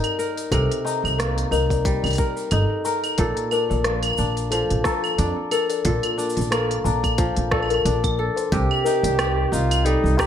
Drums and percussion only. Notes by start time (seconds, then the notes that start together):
0.04 open hi-hat, claves
0.19 shaker
0.37 open hi-hat, shaker
0.52 kick, open hi-hat, claves, shaker
0.72 open hi-hat
0.87 shaker
1.05 claves, shaker
1.20 cross-stick, open hi-hat, shaker
1.38 open hi-hat
1.52 claves, shaker
1.70 kick, open hi-hat, shaker
1.85 kick, open hi-hat, shaker
2.04 open hi-hat, claves
2.06 open hi-hat
2.11 open hi-hat
2.13 open hi-hat
2.15 kick, open hi-hat, shaker
2.37 shaker
2.51 open hi-hat, claves, shaker
2.85 shaker
3.04 open hi-hat, claves, shaker
3.18 kick, open hi-hat, shaker
3.37 open hi-hat
3.51 claves, shaker
3.71 shaker
3.84 cross-stick, open hi-hat
4.03 open hi-hat, claves, shaker
4.07 claves
4.10 claves
4.13 claves
4.17 claves, shaker
4.22 claves
4.27 claves
4.32 claves
4.37 open hi-hat, shaker
4.52 open hi-hat, claves, shaker
4.70 open hi-hat
4.84 kick, cross-stick, shaker
5.04 claves, shaker
5.19 open hi-hat, shaker
5.51 open hi-hat, claves, shaker
5.70 open hi-hat, shaker
5.85 kick, open hi-hat, shaker
6.03 open hi-hat, claves
6.19 shaker
6.30 shaker
6.37 open hi-hat, shaker
6.41 shaker
6.52 cross-stick, open hi-hat, claves, shaker
6.71 open hi-hat
6.86 shaker
7.04 kick, open hi-hat, claves, shaker
7.18 kick, open hi-hat, shaker
7.37 open hi-hat
7.51 kick, cross-stick, claves
7.63 claves
7.70 open hi-hat, claves
7.86 open hi-hat, shaker
8.04 kick, open hi-hat, claves
8.37 open hi-hat, shaker
8.52 kick, open hi-hat, shaker
8.71 claves
8.86 shaker
9.04 open hi-hat, shaker
9.19 cross-stick, open hi-hat, claves, shaker
9.53 shaker
9.71 open hi-hat, claves, shaker
9.86 open hi-hat
10.06 shaker
10.19 kick, cross-stick, claves, shaker